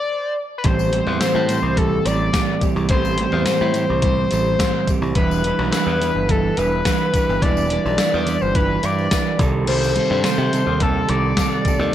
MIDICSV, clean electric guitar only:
0, 0, Header, 1, 2, 480
1, 0, Start_track
1, 0, Tempo, 564440
1, 555, Time_signature, 4, 2, 24, 8
1, 10161, End_track
2, 0, Start_track
2, 0, Title_t, "Clean electric guitar"
2, 0, Program_c, 0, 27
2, 548, Note_on_c, 0, 45, 95
2, 552, Note_on_c, 0, 52, 103
2, 559, Note_on_c, 0, 55, 111
2, 560, Note_on_c, 0, 60, 99
2, 564, Note_on_c, 0, 67, 121
2, 783, Note_off_c, 0, 45, 0
2, 785, Note_off_c, 0, 52, 0
2, 786, Note_on_c, 0, 45, 85
2, 788, Note_on_c, 0, 52, 92
2, 791, Note_off_c, 0, 55, 0
2, 794, Note_off_c, 0, 60, 0
2, 795, Note_on_c, 0, 55, 95
2, 797, Note_off_c, 0, 67, 0
2, 798, Note_on_c, 0, 60, 92
2, 800, Note_on_c, 0, 67, 90
2, 1022, Note_off_c, 0, 45, 0
2, 1025, Note_on_c, 0, 45, 94
2, 1030, Note_off_c, 0, 52, 0
2, 1033, Note_on_c, 0, 52, 80
2, 1034, Note_off_c, 0, 55, 0
2, 1036, Note_off_c, 0, 60, 0
2, 1038, Note_on_c, 0, 55, 87
2, 1039, Note_off_c, 0, 67, 0
2, 1040, Note_on_c, 0, 60, 92
2, 1043, Note_on_c, 0, 67, 92
2, 1258, Note_off_c, 0, 45, 0
2, 1261, Note_on_c, 0, 45, 75
2, 1265, Note_off_c, 0, 52, 0
2, 1269, Note_off_c, 0, 55, 0
2, 1269, Note_on_c, 0, 52, 84
2, 1271, Note_off_c, 0, 60, 0
2, 1273, Note_on_c, 0, 55, 78
2, 1275, Note_on_c, 0, 60, 94
2, 1276, Note_off_c, 0, 67, 0
2, 1280, Note_on_c, 0, 67, 91
2, 1501, Note_off_c, 0, 45, 0
2, 1512, Note_on_c, 0, 45, 81
2, 1514, Note_off_c, 0, 52, 0
2, 1515, Note_off_c, 0, 55, 0
2, 1516, Note_off_c, 0, 60, 0
2, 1517, Note_on_c, 0, 52, 96
2, 1519, Note_on_c, 0, 55, 101
2, 1526, Note_on_c, 0, 60, 94
2, 1527, Note_off_c, 0, 67, 0
2, 1530, Note_on_c, 0, 67, 96
2, 1742, Note_off_c, 0, 45, 0
2, 1752, Note_on_c, 0, 45, 83
2, 1756, Note_off_c, 0, 52, 0
2, 1757, Note_off_c, 0, 60, 0
2, 1759, Note_off_c, 0, 55, 0
2, 1759, Note_on_c, 0, 52, 80
2, 1762, Note_on_c, 0, 55, 88
2, 1767, Note_off_c, 0, 67, 0
2, 1767, Note_on_c, 0, 60, 90
2, 1770, Note_on_c, 0, 67, 87
2, 1977, Note_off_c, 0, 45, 0
2, 1986, Note_off_c, 0, 52, 0
2, 1987, Note_on_c, 0, 45, 81
2, 1989, Note_on_c, 0, 52, 78
2, 1990, Note_off_c, 0, 60, 0
2, 1994, Note_off_c, 0, 55, 0
2, 1998, Note_on_c, 0, 55, 78
2, 2000, Note_on_c, 0, 60, 79
2, 2002, Note_off_c, 0, 67, 0
2, 2006, Note_on_c, 0, 67, 88
2, 2212, Note_off_c, 0, 45, 0
2, 2223, Note_on_c, 0, 45, 85
2, 2225, Note_off_c, 0, 60, 0
2, 2226, Note_off_c, 0, 52, 0
2, 2229, Note_off_c, 0, 55, 0
2, 2229, Note_on_c, 0, 52, 90
2, 2232, Note_on_c, 0, 55, 87
2, 2235, Note_on_c, 0, 60, 90
2, 2236, Note_off_c, 0, 67, 0
2, 2239, Note_on_c, 0, 67, 92
2, 2456, Note_off_c, 0, 45, 0
2, 2466, Note_on_c, 0, 45, 107
2, 2467, Note_off_c, 0, 52, 0
2, 2468, Note_off_c, 0, 60, 0
2, 2471, Note_on_c, 0, 52, 101
2, 2473, Note_off_c, 0, 55, 0
2, 2477, Note_on_c, 0, 55, 103
2, 2479, Note_on_c, 0, 60, 112
2, 2481, Note_off_c, 0, 67, 0
2, 2484, Note_on_c, 0, 67, 115
2, 2698, Note_off_c, 0, 45, 0
2, 2708, Note_on_c, 0, 45, 91
2, 2710, Note_off_c, 0, 52, 0
2, 2711, Note_off_c, 0, 60, 0
2, 2713, Note_off_c, 0, 55, 0
2, 2713, Note_on_c, 0, 52, 92
2, 2717, Note_on_c, 0, 55, 94
2, 2721, Note_on_c, 0, 60, 92
2, 2723, Note_off_c, 0, 67, 0
2, 2726, Note_on_c, 0, 67, 99
2, 2932, Note_off_c, 0, 45, 0
2, 2943, Note_on_c, 0, 45, 94
2, 2944, Note_off_c, 0, 60, 0
2, 2945, Note_off_c, 0, 52, 0
2, 2949, Note_off_c, 0, 55, 0
2, 2949, Note_on_c, 0, 52, 85
2, 2952, Note_on_c, 0, 55, 98
2, 2954, Note_on_c, 0, 60, 99
2, 2958, Note_off_c, 0, 67, 0
2, 2961, Note_on_c, 0, 67, 95
2, 3171, Note_off_c, 0, 45, 0
2, 3181, Note_off_c, 0, 52, 0
2, 3181, Note_on_c, 0, 45, 88
2, 3184, Note_off_c, 0, 55, 0
2, 3184, Note_off_c, 0, 60, 0
2, 3184, Note_on_c, 0, 52, 89
2, 3188, Note_on_c, 0, 55, 83
2, 3194, Note_off_c, 0, 67, 0
2, 3194, Note_on_c, 0, 60, 95
2, 3198, Note_on_c, 0, 67, 101
2, 3413, Note_off_c, 0, 45, 0
2, 3423, Note_on_c, 0, 45, 98
2, 3427, Note_off_c, 0, 52, 0
2, 3429, Note_off_c, 0, 60, 0
2, 3430, Note_on_c, 0, 52, 94
2, 3432, Note_off_c, 0, 55, 0
2, 3435, Note_on_c, 0, 55, 104
2, 3437, Note_off_c, 0, 67, 0
2, 3439, Note_on_c, 0, 60, 104
2, 3440, Note_on_c, 0, 67, 101
2, 3657, Note_off_c, 0, 45, 0
2, 3668, Note_on_c, 0, 45, 87
2, 3669, Note_off_c, 0, 52, 0
2, 3669, Note_off_c, 0, 60, 0
2, 3672, Note_on_c, 0, 52, 83
2, 3677, Note_off_c, 0, 55, 0
2, 3679, Note_on_c, 0, 60, 88
2, 3680, Note_on_c, 0, 55, 96
2, 3683, Note_off_c, 0, 67, 0
2, 3686, Note_on_c, 0, 67, 84
2, 3899, Note_off_c, 0, 45, 0
2, 3909, Note_on_c, 0, 45, 86
2, 3910, Note_off_c, 0, 52, 0
2, 3911, Note_off_c, 0, 60, 0
2, 3913, Note_on_c, 0, 52, 85
2, 3915, Note_off_c, 0, 55, 0
2, 3919, Note_on_c, 0, 55, 83
2, 3921, Note_on_c, 0, 60, 89
2, 3923, Note_off_c, 0, 67, 0
2, 3926, Note_on_c, 0, 67, 93
2, 4140, Note_off_c, 0, 45, 0
2, 4150, Note_on_c, 0, 45, 91
2, 4152, Note_off_c, 0, 52, 0
2, 4155, Note_off_c, 0, 60, 0
2, 4155, Note_on_c, 0, 52, 84
2, 4157, Note_off_c, 0, 55, 0
2, 4161, Note_on_c, 0, 55, 85
2, 4164, Note_off_c, 0, 67, 0
2, 4165, Note_on_c, 0, 60, 100
2, 4167, Note_on_c, 0, 67, 95
2, 4377, Note_off_c, 0, 45, 0
2, 4384, Note_off_c, 0, 60, 0
2, 4386, Note_off_c, 0, 52, 0
2, 4389, Note_on_c, 0, 52, 100
2, 4390, Note_off_c, 0, 55, 0
2, 4393, Note_on_c, 0, 55, 115
2, 4397, Note_on_c, 0, 62, 112
2, 4400, Note_off_c, 0, 67, 0
2, 4403, Note_on_c, 0, 64, 121
2, 4408, Note_on_c, 0, 71, 110
2, 4627, Note_off_c, 0, 52, 0
2, 4631, Note_on_c, 0, 52, 92
2, 4635, Note_off_c, 0, 55, 0
2, 4636, Note_off_c, 0, 62, 0
2, 4638, Note_on_c, 0, 55, 89
2, 4639, Note_off_c, 0, 64, 0
2, 4639, Note_on_c, 0, 62, 91
2, 4643, Note_on_c, 0, 64, 95
2, 4646, Note_off_c, 0, 71, 0
2, 4650, Note_on_c, 0, 71, 94
2, 4869, Note_off_c, 0, 52, 0
2, 4871, Note_off_c, 0, 55, 0
2, 4872, Note_on_c, 0, 52, 87
2, 4874, Note_on_c, 0, 55, 92
2, 4879, Note_off_c, 0, 62, 0
2, 4882, Note_off_c, 0, 64, 0
2, 4882, Note_on_c, 0, 62, 97
2, 4885, Note_off_c, 0, 71, 0
2, 4886, Note_on_c, 0, 64, 99
2, 4888, Note_on_c, 0, 71, 100
2, 5098, Note_off_c, 0, 52, 0
2, 5108, Note_on_c, 0, 52, 85
2, 5110, Note_off_c, 0, 62, 0
2, 5111, Note_off_c, 0, 55, 0
2, 5112, Note_off_c, 0, 64, 0
2, 5114, Note_on_c, 0, 55, 77
2, 5115, Note_off_c, 0, 71, 0
2, 5120, Note_on_c, 0, 62, 91
2, 5122, Note_on_c, 0, 64, 101
2, 5125, Note_on_c, 0, 71, 87
2, 5337, Note_off_c, 0, 52, 0
2, 5347, Note_on_c, 0, 52, 99
2, 5349, Note_off_c, 0, 55, 0
2, 5349, Note_off_c, 0, 62, 0
2, 5350, Note_off_c, 0, 64, 0
2, 5352, Note_on_c, 0, 55, 98
2, 5354, Note_off_c, 0, 71, 0
2, 5359, Note_on_c, 0, 62, 95
2, 5360, Note_on_c, 0, 64, 95
2, 5364, Note_on_c, 0, 71, 112
2, 5578, Note_off_c, 0, 52, 0
2, 5587, Note_off_c, 0, 62, 0
2, 5588, Note_on_c, 0, 52, 76
2, 5591, Note_off_c, 0, 55, 0
2, 5593, Note_off_c, 0, 64, 0
2, 5593, Note_off_c, 0, 71, 0
2, 5594, Note_on_c, 0, 55, 87
2, 5598, Note_on_c, 0, 62, 90
2, 5603, Note_on_c, 0, 64, 90
2, 5603, Note_on_c, 0, 71, 97
2, 5820, Note_off_c, 0, 52, 0
2, 5829, Note_off_c, 0, 62, 0
2, 5830, Note_off_c, 0, 55, 0
2, 5830, Note_on_c, 0, 52, 89
2, 5833, Note_off_c, 0, 64, 0
2, 5833, Note_on_c, 0, 55, 88
2, 5838, Note_off_c, 0, 71, 0
2, 5839, Note_on_c, 0, 62, 92
2, 5844, Note_on_c, 0, 64, 83
2, 5848, Note_on_c, 0, 71, 96
2, 6061, Note_off_c, 0, 52, 0
2, 6071, Note_on_c, 0, 52, 91
2, 6074, Note_off_c, 0, 62, 0
2, 6076, Note_off_c, 0, 55, 0
2, 6076, Note_off_c, 0, 64, 0
2, 6079, Note_on_c, 0, 55, 80
2, 6083, Note_off_c, 0, 71, 0
2, 6084, Note_on_c, 0, 62, 93
2, 6086, Note_on_c, 0, 64, 89
2, 6093, Note_on_c, 0, 71, 101
2, 6306, Note_off_c, 0, 52, 0
2, 6317, Note_on_c, 0, 52, 96
2, 6318, Note_off_c, 0, 62, 0
2, 6319, Note_off_c, 0, 64, 0
2, 6321, Note_off_c, 0, 55, 0
2, 6324, Note_on_c, 0, 55, 109
2, 6326, Note_off_c, 0, 71, 0
2, 6329, Note_on_c, 0, 62, 117
2, 6330, Note_on_c, 0, 64, 112
2, 6336, Note_on_c, 0, 71, 107
2, 6543, Note_off_c, 0, 52, 0
2, 6552, Note_off_c, 0, 62, 0
2, 6553, Note_off_c, 0, 55, 0
2, 6553, Note_on_c, 0, 52, 81
2, 6556, Note_on_c, 0, 55, 87
2, 6558, Note_off_c, 0, 64, 0
2, 6559, Note_off_c, 0, 71, 0
2, 6562, Note_on_c, 0, 62, 91
2, 6568, Note_on_c, 0, 64, 102
2, 6569, Note_on_c, 0, 71, 90
2, 6777, Note_off_c, 0, 52, 0
2, 6787, Note_off_c, 0, 62, 0
2, 6787, Note_on_c, 0, 52, 87
2, 6788, Note_off_c, 0, 55, 0
2, 6790, Note_off_c, 0, 64, 0
2, 6791, Note_on_c, 0, 55, 84
2, 6796, Note_off_c, 0, 71, 0
2, 6798, Note_on_c, 0, 62, 92
2, 6800, Note_on_c, 0, 64, 102
2, 6806, Note_on_c, 0, 71, 97
2, 7015, Note_off_c, 0, 52, 0
2, 7025, Note_on_c, 0, 52, 79
2, 7027, Note_off_c, 0, 62, 0
2, 7028, Note_off_c, 0, 55, 0
2, 7029, Note_off_c, 0, 64, 0
2, 7031, Note_on_c, 0, 55, 89
2, 7035, Note_off_c, 0, 71, 0
2, 7037, Note_on_c, 0, 62, 91
2, 7039, Note_on_c, 0, 64, 79
2, 7045, Note_on_c, 0, 71, 90
2, 7257, Note_off_c, 0, 52, 0
2, 7267, Note_on_c, 0, 52, 91
2, 7269, Note_off_c, 0, 62, 0
2, 7271, Note_off_c, 0, 64, 0
2, 7272, Note_off_c, 0, 55, 0
2, 7276, Note_off_c, 0, 71, 0
2, 7276, Note_on_c, 0, 55, 90
2, 7279, Note_on_c, 0, 62, 92
2, 7282, Note_on_c, 0, 64, 108
2, 7286, Note_on_c, 0, 71, 101
2, 7496, Note_off_c, 0, 52, 0
2, 7506, Note_on_c, 0, 52, 79
2, 7507, Note_off_c, 0, 62, 0
2, 7512, Note_off_c, 0, 55, 0
2, 7513, Note_off_c, 0, 64, 0
2, 7515, Note_on_c, 0, 55, 85
2, 7517, Note_off_c, 0, 71, 0
2, 7517, Note_on_c, 0, 62, 81
2, 7523, Note_on_c, 0, 64, 90
2, 7527, Note_on_c, 0, 71, 84
2, 7737, Note_off_c, 0, 52, 0
2, 7745, Note_off_c, 0, 62, 0
2, 7747, Note_on_c, 0, 52, 88
2, 7748, Note_off_c, 0, 55, 0
2, 7748, Note_off_c, 0, 64, 0
2, 7752, Note_on_c, 0, 55, 77
2, 7755, Note_off_c, 0, 71, 0
2, 7756, Note_on_c, 0, 62, 77
2, 7758, Note_on_c, 0, 64, 83
2, 7766, Note_on_c, 0, 71, 100
2, 7976, Note_off_c, 0, 52, 0
2, 7980, Note_off_c, 0, 62, 0
2, 7981, Note_off_c, 0, 64, 0
2, 7984, Note_on_c, 0, 48, 93
2, 7985, Note_off_c, 0, 71, 0
2, 7989, Note_on_c, 0, 51, 103
2, 7993, Note_off_c, 0, 55, 0
2, 7996, Note_on_c, 0, 55, 97
2, 8001, Note_on_c, 0, 60, 99
2, 8001, Note_on_c, 0, 67, 101
2, 8005, Note_on_c, 0, 69, 109
2, 8220, Note_off_c, 0, 51, 0
2, 8222, Note_off_c, 0, 48, 0
2, 8226, Note_on_c, 0, 48, 102
2, 8230, Note_on_c, 0, 51, 113
2, 8231, Note_off_c, 0, 55, 0
2, 8235, Note_on_c, 0, 55, 96
2, 8237, Note_off_c, 0, 60, 0
2, 8238, Note_off_c, 0, 67, 0
2, 8241, Note_on_c, 0, 60, 108
2, 8241, Note_on_c, 0, 67, 111
2, 8242, Note_off_c, 0, 69, 0
2, 8245, Note_on_c, 0, 69, 117
2, 8456, Note_off_c, 0, 51, 0
2, 8457, Note_off_c, 0, 48, 0
2, 8461, Note_on_c, 0, 48, 92
2, 8466, Note_on_c, 0, 51, 89
2, 8468, Note_off_c, 0, 55, 0
2, 8470, Note_off_c, 0, 60, 0
2, 8471, Note_on_c, 0, 55, 89
2, 8473, Note_on_c, 0, 60, 96
2, 8474, Note_off_c, 0, 67, 0
2, 8477, Note_off_c, 0, 69, 0
2, 8477, Note_on_c, 0, 67, 90
2, 8481, Note_on_c, 0, 69, 102
2, 8696, Note_off_c, 0, 51, 0
2, 8698, Note_off_c, 0, 48, 0
2, 8701, Note_on_c, 0, 48, 81
2, 8706, Note_on_c, 0, 51, 83
2, 8709, Note_off_c, 0, 55, 0
2, 8712, Note_off_c, 0, 60, 0
2, 8712, Note_on_c, 0, 55, 89
2, 8714, Note_off_c, 0, 67, 0
2, 8715, Note_on_c, 0, 60, 95
2, 8717, Note_on_c, 0, 67, 97
2, 8719, Note_off_c, 0, 69, 0
2, 8722, Note_on_c, 0, 69, 100
2, 8937, Note_off_c, 0, 48, 0
2, 8942, Note_off_c, 0, 51, 0
2, 8947, Note_on_c, 0, 48, 88
2, 8951, Note_off_c, 0, 55, 0
2, 8952, Note_off_c, 0, 60, 0
2, 8953, Note_on_c, 0, 51, 93
2, 8955, Note_on_c, 0, 55, 88
2, 8959, Note_off_c, 0, 69, 0
2, 8962, Note_on_c, 0, 60, 85
2, 8963, Note_off_c, 0, 67, 0
2, 8966, Note_on_c, 0, 67, 86
2, 8969, Note_on_c, 0, 69, 90
2, 9169, Note_off_c, 0, 48, 0
2, 9178, Note_off_c, 0, 51, 0
2, 9179, Note_on_c, 0, 48, 92
2, 9186, Note_off_c, 0, 60, 0
2, 9188, Note_off_c, 0, 55, 0
2, 9188, Note_on_c, 0, 51, 97
2, 9191, Note_on_c, 0, 55, 104
2, 9193, Note_off_c, 0, 69, 0
2, 9196, Note_on_c, 0, 60, 98
2, 9197, Note_off_c, 0, 67, 0
2, 9201, Note_on_c, 0, 67, 96
2, 9204, Note_on_c, 0, 69, 105
2, 9416, Note_off_c, 0, 48, 0
2, 9421, Note_off_c, 0, 51, 0
2, 9426, Note_on_c, 0, 48, 78
2, 9429, Note_off_c, 0, 60, 0
2, 9431, Note_off_c, 0, 55, 0
2, 9431, Note_on_c, 0, 51, 80
2, 9434, Note_on_c, 0, 55, 97
2, 9437, Note_off_c, 0, 69, 0
2, 9439, Note_on_c, 0, 60, 87
2, 9443, Note_off_c, 0, 67, 0
2, 9446, Note_on_c, 0, 67, 92
2, 9448, Note_on_c, 0, 69, 95
2, 9661, Note_off_c, 0, 48, 0
2, 9665, Note_off_c, 0, 51, 0
2, 9672, Note_on_c, 0, 48, 79
2, 9675, Note_off_c, 0, 60, 0
2, 9675, Note_on_c, 0, 51, 79
2, 9678, Note_off_c, 0, 55, 0
2, 9682, Note_on_c, 0, 55, 89
2, 9683, Note_off_c, 0, 69, 0
2, 9686, Note_off_c, 0, 67, 0
2, 9686, Note_on_c, 0, 60, 98
2, 9690, Note_on_c, 0, 67, 84
2, 9693, Note_on_c, 0, 69, 88
2, 9899, Note_off_c, 0, 48, 0
2, 9906, Note_off_c, 0, 51, 0
2, 9909, Note_on_c, 0, 48, 91
2, 9915, Note_off_c, 0, 60, 0
2, 9916, Note_on_c, 0, 51, 83
2, 9919, Note_off_c, 0, 55, 0
2, 9922, Note_on_c, 0, 55, 90
2, 9923, Note_off_c, 0, 69, 0
2, 9925, Note_off_c, 0, 67, 0
2, 9925, Note_on_c, 0, 60, 87
2, 9928, Note_on_c, 0, 67, 86
2, 9933, Note_on_c, 0, 69, 101
2, 10140, Note_off_c, 0, 48, 0
2, 10145, Note_off_c, 0, 51, 0
2, 10151, Note_off_c, 0, 60, 0
2, 10155, Note_off_c, 0, 55, 0
2, 10160, Note_off_c, 0, 69, 0
2, 10161, Note_off_c, 0, 67, 0
2, 10161, End_track
0, 0, End_of_file